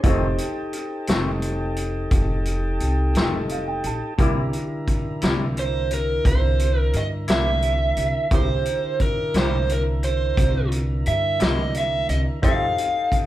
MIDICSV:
0, 0, Header, 1, 7, 480
1, 0, Start_track
1, 0, Tempo, 688073
1, 36, Time_signature, 12, 3, 24, 8
1, 9251, End_track
2, 0, Start_track
2, 0, Title_t, "Electric slide guitar"
2, 0, Program_c, 0, 29
2, 3902, Note_on_c, 0, 72, 86
2, 4139, Note_off_c, 0, 72, 0
2, 4142, Note_on_c, 0, 70, 73
2, 4373, Note_off_c, 0, 70, 0
2, 4376, Note_on_c, 0, 72, 83
2, 4739, Note_off_c, 0, 72, 0
2, 4739, Note_on_c, 0, 70, 83
2, 4860, Note_on_c, 0, 75, 87
2, 4864, Note_off_c, 0, 70, 0
2, 4923, Note_off_c, 0, 75, 0
2, 5091, Note_on_c, 0, 76, 93
2, 5821, Note_on_c, 0, 72, 87
2, 5828, Note_off_c, 0, 76, 0
2, 6291, Note_off_c, 0, 72, 0
2, 6293, Note_on_c, 0, 70, 79
2, 6534, Note_off_c, 0, 70, 0
2, 6538, Note_on_c, 0, 72, 86
2, 6776, Note_off_c, 0, 72, 0
2, 6782, Note_on_c, 0, 70, 81
2, 6844, Note_off_c, 0, 70, 0
2, 7006, Note_on_c, 0, 72, 76
2, 7454, Note_off_c, 0, 72, 0
2, 7727, Note_on_c, 0, 76, 81
2, 7966, Note_off_c, 0, 76, 0
2, 7969, Note_on_c, 0, 75, 83
2, 8210, Note_off_c, 0, 75, 0
2, 8217, Note_on_c, 0, 76, 88
2, 8437, Note_off_c, 0, 76, 0
2, 8440, Note_on_c, 0, 75, 89
2, 8504, Note_off_c, 0, 75, 0
2, 8682, Note_on_c, 0, 77, 81
2, 9189, Note_off_c, 0, 77, 0
2, 9251, End_track
3, 0, Start_track
3, 0, Title_t, "Upright piano"
3, 0, Program_c, 1, 0
3, 26, Note_on_c, 1, 63, 65
3, 32, Note_on_c, 1, 67, 57
3, 38, Note_on_c, 1, 69, 51
3, 45, Note_on_c, 1, 72, 68
3, 2451, Note_on_c, 1, 77, 50
3, 2559, Note_off_c, 1, 77, 0
3, 2566, Note_on_c, 1, 79, 52
3, 2677, Note_off_c, 1, 79, 0
3, 2694, Note_on_c, 1, 81, 48
3, 2891, Note_off_c, 1, 63, 0
3, 2894, Note_off_c, 1, 67, 0
3, 2897, Note_off_c, 1, 69, 0
3, 2901, Note_off_c, 1, 72, 0
3, 2913, Note_off_c, 1, 81, 0
3, 2923, Note_on_c, 1, 64, 61
3, 2924, Note_on_c, 1, 67, 54
3, 2928, Note_on_c, 1, 70, 54
3, 2931, Note_on_c, 1, 86, 65
3, 5775, Note_off_c, 1, 64, 0
3, 5776, Note_off_c, 1, 67, 0
3, 5777, Note_off_c, 1, 70, 0
3, 5779, Note_off_c, 1, 86, 0
3, 5798, Note_on_c, 1, 64, 48
3, 5805, Note_on_c, 1, 67, 49
3, 5811, Note_on_c, 1, 70, 49
3, 5813, Note_on_c, 1, 86, 60
3, 8645, Note_off_c, 1, 64, 0
3, 8649, Note_off_c, 1, 67, 0
3, 8652, Note_off_c, 1, 70, 0
3, 8653, Note_off_c, 1, 86, 0
3, 8667, Note_on_c, 1, 63, 50
3, 8675, Note_on_c, 1, 67, 47
3, 8676, Note_on_c, 1, 69, 46
3, 8680, Note_on_c, 1, 72, 55
3, 9251, Note_off_c, 1, 63, 0
3, 9251, Note_off_c, 1, 67, 0
3, 9251, Note_off_c, 1, 69, 0
3, 9251, Note_off_c, 1, 72, 0
3, 9251, End_track
4, 0, Start_track
4, 0, Title_t, "Tonewheel organ"
4, 0, Program_c, 2, 16
4, 21, Note_on_c, 2, 63, 58
4, 21, Note_on_c, 2, 69, 60
4, 22, Note_on_c, 2, 67, 61
4, 2888, Note_off_c, 2, 63, 0
4, 2889, Note_off_c, 2, 67, 0
4, 2889, Note_off_c, 2, 69, 0
4, 2926, Note_on_c, 2, 70, 62
4, 2928, Note_on_c, 2, 50, 59
4, 2930, Note_on_c, 2, 64, 63
4, 5776, Note_off_c, 2, 70, 0
4, 5777, Note_off_c, 2, 50, 0
4, 5779, Note_off_c, 2, 64, 0
4, 5808, Note_on_c, 2, 70, 59
4, 5809, Note_on_c, 2, 64, 58
4, 5811, Note_on_c, 2, 50, 61
4, 8650, Note_off_c, 2, 70, 0
4, 8651, Note_off_c, 2, 64, 0
4, 8652, Note_off_c, 2, 50, 0
4, 8694, Note_on_c, 2, 63, 61
4, 8700, Note_on_c, 2, 69, 62
4, 8702, Note_on_c, 2, 67, 62
4, 9251, Note_off_c, 2, 63, 0
4, 9251, Note_off_c, 2, 67, 0
4, 9251, Note_off_c, 2, 69, 0
4, 9251, End_track
5, 0, Start_track
5, 0, Title_t, "Clean electric guitar"
5, 0, Program_c, 3, 27
5, 25, Note_on_c, 3, 41, 79
5, 34, Note_on_c, 3, 51, 83
5, 41, Note_on_c, 3, 57, 81
5, 42, Note_on_c, 3, 60, 87
5, 175, Note_off_c, 3, 41, 0
5, 180, Note_off_c, 3, 51, 0
5, 183, Note_off_c, 3, 57, 0
5, 184, Note_off_c, 3, 60, 0
5, 759, Note_on_c, 3, 60, 76
5, 763, Note_on_c, 3, 57, 66
5, 770, Note_on_c, 3, 51, 65
5, 775, Note_on_c, 3, 41, 58
5, 904, Note_off_c, 3, 60, 0
5, 905, Note_off_c, 3, 57, 0
5, 909, Note_off_c, 3, 51, 0
5, 911, Note_off_c, 3, 41, 0
5, 2210, Note_on_c, 3, 60, 77
5, 2217, Note_on_c, 3, 57, 66
5, 2224, Note_on_c, 3, 51, 70
5, 2226, Note_on_c, 3, 41, 62
5, 2351, Note_off_c, 3, 60, 0
5, 2354, Note_off_c, 3, 57, 0
5, 2358, Note_off_c, 3, 51, 0
5, 2359, Note_off_c, 3, 41, 0
5, 2916, Note_on_c, 3, 48, 74
5, 2927, Note_on_c, 3, 55, 74
5, 2929, Note_on_c, 3, 58, 77
5, 2938, Note_on_c, 3, 64, 82
5, 3064, Note_off_c, 3, 48, 0
5, 3070, Note_off_c, 3, 55, 0
5, 3071, Note_off_c, 3, 58, 0
5, 3075, Note_off_c, 3, 64, 0
5, 3645, Note_on_c, 3, 64, 74
5, 3654, Note_on_c, 3, 58, 73
5, 3657, Note_on_c, 3, 55, 68
5, 3659, Note_on_c, 3, 48, 63
5, 3789, Note_off_c, 3, 64, 0
5, 3793, Note_off_c, 3, 58, 0
5, 3795, Note_off_c, 3, 55, 0
5, 3796, Note_off_c, 3, 48, 0
5, 5078, Note_on_c, 3, 64, 68
5, 5081, Note_on_c, 3, 58, 65
5, 5089, Note_on_c, 3, 48, 60
5, 5090, Note_on_c, 3, 55, 56
5, 5225, Note_off_c, 3, 64, 0
5, 5227, Note_off_c, 3, 58, 0
5, 5231, Note_off_c, 3, 48, 0
5, 5231, Note_off_c, 3, 55, 0
5, 6520, Note_on_c, 3, 64, 57
5, 6527, Note_on_c, 3, 55, 63
5, 6527, Note_on_c, 3, 58, 66
5, 6531, Note_on_c, 3, 48, 54
5, 6665, Note_off_c, 3, 64, 0
5, 6668, Note_off_c, 3, 55, 0
5, 6668, Note_off_c, 3, 58, 0
5, 6670, Note_off_c, 3, 48, 0
5, 7951, Note_on_c, 3, 64, 72
5, 7956, Note_on_c, 3, 58, 65
5, 7963, Note_on_c, 3, 55, 61
5, 7965, Note_on_c, 3, 48, 59
5, 8098, Note_off_c, 3, 64, 0
5, 8101, Note_off_c, 3, 58, 0
5, 8104, Note_off_c, 3, 55, 0
5, 8105, Note_off_c, 3, 48, 0
5, 8667, Note_on_c, 3, 53, 59
5, 8675, Note_on_c, 3, 60, 74
5, 8682, Note_on_c, 3, 63, 75
5, 8686, Note_on_c, 3, 69, 68
5, 8815, Note_off_c, 3, 53, 0
5, 8819, Note_off_c, 3, 60, 0
5, 8823, Note_off_c, 3, 63, 0
5, 8825, Note_off_c, 3, 69, 0
5, 9251, End_track
6, 0, Start_track
6, 0, Title_t, "Upright bass"
6, 0, Program_c, 4, 32
6, 26, Note_on_c, 4, 29, 101
6, 252, Note_off_c, 4, 29, 0
6, 757, Note_on_c, 4, 29, 89
6, 1452, Note_off_c, 4, 29, 0
6, 1472, Note_on_c, 4, 29, 86
6, 1930, Note_off_c, 4, 29, 0
6, 1959, Note_on_c, 4, 36, 85
6, 2182, Note_off_c, 4, 36, 0
6, 2188, Note_on_c, 4, 29, 83
6, 2649, Note_off_c, 4, 29, 0
6, 2680, Note_on_c, 4, 34, 86
6, 2793, Note_off_c, 4, 34, 0
6, 2920, Note_on_c, 4, 36, 92
6, 3143, Note_off_c, 4, 36, 0
6, 3646, Note_on_c, 4, 36, 83
6, 4337, Note_off_c, 4, 36, 0
6, 4360, Note_on_c, 4, 36, 92
6, 4814, Note_off_c, 4, 36, 0
6, 4843, Note_on_c, 4, 43, 95
6, 5064, Note_off_c, 4, 43, 0
6, 5084, Note_on_c, 4, 36, 84
6, 5536, Note_off_c, 4, 36, 0
6, 5561, Note_on_c, 4, 36, 89
6, 5672, Note_off_c, 4, 36, 0
6, 5802, Note_on_c, 4, 36, 90
6, 6023, Note_off_c, 4, 36, 0
6, 6517, Note_on_c, 4, 36, 83
6, 7210, Note_off_c, 4, 36, 0
6, 7237, Note_on_c, 4, 36, 90
6, 7690, Note_off_c, 4, 36, 0
6, 7723, Note_on_c, 4, 43, 86
6, 7941, Note_off_c, 4, 43, 0
6, 7960, Note_on_c, 4, 36, 86
6, 8410, Note_off_c, 4, 36, 0
6, 8433, Note_on_c, 4, 36, 92
6, 8545, Note_off_c, 4, 36, 0
6, 8673, Note_on_c, 4, 41, 107
6, 8894, Note_off_c, 4, 41, 0
6, 9251, End_track
7, 0, Start_track
7, 0, Title_t, "Drums"
7, 26, Note_on_c, 9, 36, 104
7, 26, Note_on_c, 9, 42, 88
7, 96, Note_off_c, 9, 36, 0
7, 96, Note_off_c, 9, 42, 0
7, 268, Note_on_c, 9, 42, 59
7, 337, Note_off_c, 9, 42, 0
7, 508, Note_on_c, 9, 42, 58
7, 578, Note_off_c, 9, 42, 0
7, 748, Note_on_c, 9, 42, 80
7, 763, Note_on_c, 9, 38, 97
7, 818, Note_off_c, 9, 42, 0
7, 833, Note_off_c, 9, 38, 0
7, 991, Note_on_c, 9, 42, 62
7, 1061, Note_off_c, 9, 42, 0
7, 1231, Note_on_c, 9, 42, 57
7, 1301, Note_off_c, 9, 42, 0
7, 1471, Note_on_c, 9, 42, 73
7, 1473, Note_on_c, 9, 36, 108
7, 1541, Note_off_c, 9, 42, 0
7, 1543, Note_off_c, 9, 36, 0
7, 1712, Note_on_c, 9, 42, 59
7, 1782, Note_off_c, 9, 42, 0
7, 1955, Note_on_c, 9, 42, 52
7, 2025, Note_off_c, 9, 42, 0
7, 2196, Note_on_c, 9, 42, 74
7, 2211, Note_on_c, 9, 38, 101
7, 2266, Note_off_c, 9, 42, 0
7, 2281, Note_off_c, 9, 38, 0
7, 2437, Note_on_c, 9, 42, 53
7, 2507, Note_off_c, 9, 42, 0
7, 2677, Note_on_c, 9, 42, 50
7, 2746, Note_off_c, 9, 42, 0
7, 2920, Note_on_c, 9, 36, 100
7, 2921, Note_on_c, 9, 42, 70
7, 2990, Note_off_c, 9, 36, 0
7, 2990, Note_off_c, 9, 42, 0
7, 3161, Note_on_c, 9, 42, 50
7, 3230, Note_off_c, 9, 42, 0
7, 3401, Note_on_c, 9, 36, 66
7, 3401, Note_on_c, 9, 42, 58
7, 3471, Note_off_c, 9, 36, 0
7, 3471, Note_off_c, 9, 42, 0
7, 3638, Note_on_c, 9, 42, 75
7, 3653, Note_on_c, 9, 38, 91
7, 3708, Note_off_c, 9, 42, 0
7, 3723, Note_off_c, 9, 38, 0
7, 3885, Note_on_c, 9, 42, 58
7, 3955, Note_off_c, 9, 42, 0
7, 4120, Note_on_c, 9, 42, 59
7, 4190, Note_off_c, 9, 42, 0
7, 4361, Note_on_c, 9, 36, 96
7, 4361, Note_on_c, 9, 42, 85
7, 4430, Note_off_c, 9, 36, 0
7, 4431, Note_off_c, 9, 42, 0
7, 4600, Note_on_c, 9, 42, 66
7, 4670, Note_off_c, 9, 42, 0
7, 4837, Note_on_c, 9, 42, 59
7, 4907, Note_off_c, 9, 42, 0
7, 5077, Note_on_c, 9, 42, 82
7, 5091, Note_on_c, 9, 38, 104
7, 5146, Note_off_c, 9, 42, 0
7, 5161, Note_off_c, 9, 38, 0
7, 5318, Note_on_c, 9, 42, 55
7, 5388, Note_off_c, 9, 42, 0
7, 5557, Note_on_c, 9, 42, 57
7, 5627, Note_off_c, 9, 42, 0
7, 5797, Note_on_c, 9, 42, 78
7, 5798, Note_on_c, 9, 36, 108
7, 5867, Note_off_c, 9, 42, 0
7, 5868, Note_off_c, 9, 36, 0
7, 6038, Note_on_c, 9, 42, 53
7, 6108, Note_off_c, 9, 42, 0
7, 6276, Note_on_c, 9, 42, 49
7, 6278, Note_on_c, 9, 36, 70
7, 6346, Note_off_c, 9, 42, 0
7, 6348, Note_off_c, 9, 36, 0
7, 6517, Note_on_c, 9, 42, 71
7, 6531, Note_on_c, 9, 38, 94
7, 6586, Note_off_c, 9, 42, 0
7, 6601, Note_off_c, 9, 38, 0
7, 6763, Note_on_c, 9, 42, 59
7, 6832, Note_off_c, 9, 42, 0
7, 6997, Note_on_c, 9, 42, 54
7, 7067, Note_off_c, 9, 42, 0
7, 7237, Note_on_c, 9, 36, 102
7, 7241, Note_on_c, 9, 42, 81
7, 7307, Note_off_c, 9, 36, 0
7, 7310, Note_off_c, 9, 42, 0
7, 7477, Note_on_c, 9, 42, 63
7, 7546, Note_off_c, 9, 42, 0
7, 7714, Note_on_c, 9, 42, 55
7, 7784, Note_off_c, 9, 42, 0
7, 7952, Note_on_c, 9, 42, 72
7, 7967, Note_on_c, 9, 38, 106
7, 8022, Note_off_c, 9, 42, 0
7, 8036, Note_off_c, 9, 38, 0
7, 8193, Note_on_c, 9, 42, 60
7, 8263, Note_off_c, 9, 42, 0
7, 8434, Note_on_c, 9, 42, 57
7, 8504, Note_off_c, 9, 42, 0
7, 8671, Note_on_c, 9, 36, 109
7, 8674, Note_on_c, 9, 42, 80
7, 8741, Note_off_c, 9, 36, 0
7, 8744, Note_off_c, 9, 42, 0
7, 8917, Note_on_c, 9, 42, 62
7, 8987, Note_off_c, 9, 42, 0
7, 9151, Note_on_c, 9, 36, 65
7, 9154, Note_on_c, 9, 42, 56
7, 9221, Note_off_c, 9, 36, 0
7, 9224, Note_off_c, 9, 42, 0
7, 9251, End_track
0, 0, End_of_file